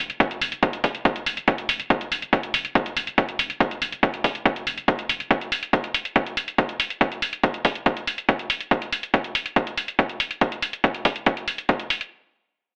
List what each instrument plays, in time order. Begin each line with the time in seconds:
0.10 closed hi-hat
0.20 kick, closed hi-hat
0.31 sub bass F1, closed hi-hat
0.41 sub bass F1, open hi-hat
0.52 closed hi-hat
0.63 kick, closed hi-hat
0.73 sub bass F1, closed hi-hat
0.84 sub bass F1, kick, open hi-hat
0.95 closed hi-hat
1.05 kick, closed hi-hat
1.16 sub bass F1, closed hi-hat
1.26 sub bass F1, open hi-hat
1.37 closed hi-hat
1.48 kick, closed hi-hat
1.58 sub bass F1, closed hi-hat
1.69 sub bass F1, open hi-hat
1.80 closed hi-hat
1.90 kick, closed hi-hat
2.01 sub bass F1, closed hi-hat
2.12 sub bass F1, open hi-hat
2.22 closed hi-hat
2.33 kick, closed hi-hat
2.43 sub bass F1, closed hi-hat
2.54 sub bass F1, open hi-hat
2.65 closed hi-hat
2.75 kick, closed hi-hat
2.86 sub bass F1, closed hi-hat
2.97 sub bass F1, open hi-hat
3.07 closed hi-hat
3.18 kick, closed hi-hat
3.29 sub bass F1, closed hi-hat
3.39 sub bass F1, open hi-hat
3.50 closed hi-hat
3.60 kick, closed hi-hat
3.71 sub bass F1, closed hi-hat
3.82 sub bass F1, open hi-hat
3.92 closed hi-hat
4.03 kick, closed hi-hat
4.14 sub bass F1, closed hi-hat
4.24 sub bass F1, kick, open hi-hat
4.35 closed hi-hat
4.46 kick, closed hi-hat
4.56 sub bass F1, closed hi-hat
4.67 sub bass F1, open hi-hat
4.78 closed hi-hat
4.88 kick, closed hi-hat
4.99 sub bass F1, closed hi-hat
5.09 sub bass F1, open hi-hat
5.20 closed hi-hat
5.31 kick, closed hi-hat
5.41 closed hi-hat
5.52 open hi-hat
5.63 closed hi-hat
5.73 kick, closed hi-hat
5.84 closed hi-hat
5.94 open hi-hat
6.05 closed hi-hat
6.16 kick, closed hi-hat
6.27 closed hi-hat
6.37 open hi-hat
6.48 closed hi-hat
6.58 kick, closed hi-hat
6.69 closed hi-hat
6.80 open hi-hat
6.90 closed hi-hat
7.01 kick, closed hi-hat
7.12 closed hi-hat
7.22 open hi-hat
7.33 closed hi-hat
7.43 kick, closed hi-hat
7.54 closed hi-hat
7.65 kick, open hi-hat
7.75 closed hi-hat
7.86 kick, closed hi-hat
7.97 closed hi-hat
8.07 open hi-hat
8.18 closed hi-hat
8.29 kick, closed hi-hat
8.39 closed hi-hat
8.50 open hi-hat
8.61 closed hi-hat
8.71 kick, closed hi-hat
8.82 closed hi-hat
8.93 open hi-hat
9.03 closed hi-hat
9.14 kick, closed hi-hat
9.24 closed hi-hat
9.35 open hi-hat
9.46 closed hi-hat
9.56 kick, closed hi-hat
9.67 closed hi-hat
9.77 open hi-hat
9.88 closed hi-hat
9.99 kick, closed hi-hat
10.09 closed hi-hat
10.20 open hi-hat
10.31 closed hi-hat
10.41 kick, closed hi-hat
10.52 closed hi-hat
10.62 open hi-hat
10.73 closed hi-hat
10.84 kick, closed hi-hat
10.94 closed hi-hat
11.05 kick, open hi-hat
11.16 closed hi-hat
11.26 kick, closed hi-hat
11.37 closed hi-hat
11.48 open hi-hat
11.58 closed hi-hat
11.69 kick, closed hi-hat
11.80 closed hi-hat
11.90 open hi-hat
12.01 closed hi-hat